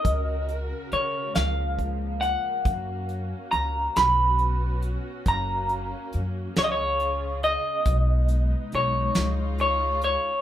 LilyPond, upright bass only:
\new Staff \with { instrumentName = "Upright bass" } { \clef bass \time 6/8 \key fis \major \tempo 4. = 46 cis,4 cis8 cis,4. | fis,4 cis,8 b,,4. | fis,,4 fis,8 cis,4. | b,,4 b,,8 cis,4. | }